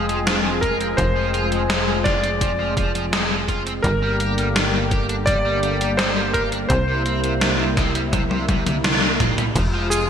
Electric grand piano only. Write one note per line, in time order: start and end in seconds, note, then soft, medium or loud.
0.00 0.58 G#4 medium
0.61 0.99 A#4 medium
0.97 2.08 C5 medium
2.04 3.44 D5 medium
3.83 5.31 A#4 medium
5.26 6.00 D5 loud
5.97 6.35 C5 medium
6.33 6.42 A#4 medium
6.69 8.80 C5 medium
9.90 10.10 G#4 medium